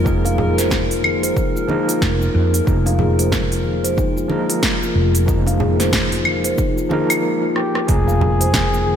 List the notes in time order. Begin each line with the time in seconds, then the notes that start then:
Already playing: F1 F3 G#3 A#3 D#4 F4 A#4
0.04 F3 A#3 D#4 F4 G#4, kick, cabasa
0.25 F5, open hi-hat, high bongo, cabasa
0.38 G#4, low conga
0.58 C5, snare, open hi-hat, high bongo, cabasa
0.70 A#4, kick, snare, low conga, cabasa
0.91 F4, open hi-hat, cabasa
1.03 G#4, high conga, claves
1.23 C5, open hi-hat, cabasa
1.36 D#4, kick, cabasa
1.56 F4, cabasa
1.67 F3 A#3 D#4 G#4, high bongo, high conga
1.71 A#4
1.88 F4, open hi-hat, cabasa
2.02 F1 A#4, kick, snare, cabasa
2.21 F4, high conga, cabasa
2.34 F2 F4
2.54 F4, open hi-hat, cabasa
2.64 F1 F3 A#3 D#4 F4, kick, cabasa
2.69 G#4
2.86 F5, open hi-hat, high bongo, cabasa
2.99 G#4, low conga
3.19 C5, open hi-hat, cabasa
3.32 A#4, kick, snare, low conga, cabasa
3.52 F4, open hi-hat, cabasa
3.64 G#4, high conga
3.84 C5, open hi-hat, cabasa
3.97 D#4, kick, cabasa
4.17 F4, cabasa
4.28 F3 A#3 D#4 G#4, high bongo, high conga
4.32 A#4
4.49 F4, open hi-hat, cabasa
4.63 A#4, kick, snare, cabasa
4.82 F4, cabasa
4.95 F1 F4
5.15 F4, open hi-hat, cabasa
5.26 F3 A#3 D#4 F4 G#4, kick, cabasa
5.47 F5, open hi-hat, high bongo, cabasa
5.60 G#4, low conga
5.80 C5, snare, open hi-hat, high bongo, high conga, cabasa
5.93 kick, snare, low conga, cabasa
6.12 F4, open hi-hat, cabasa
6.25 G#4, high conga, claves
6.44 C5, open hi-hat, cabasa
6.58 D#4, kick, cabasa
6.77 F4, cabasa
6.89 F3 A#3 D#4 G#4 A#4, high bongo, high conga
7.09 F4, open hi-hat, cabasa, claves
7.22 A#4
7.42 F4
7.55 F4 G4, cross-stick
7.75 cross-stick
7.87 F1 C3 F3 G#3 A#3 D#4 G#4, kick, open hi-hat, impact, cabasa
7.91 G#4
8.08 F5, cabasa
8.21 G#4, low conga
8.40 C5, open hi-hat, cabasa
8.53 kick, snare, open hi-hat, low conga, cabasa
8.73 F4, cabasa
8.87 G#4, high conga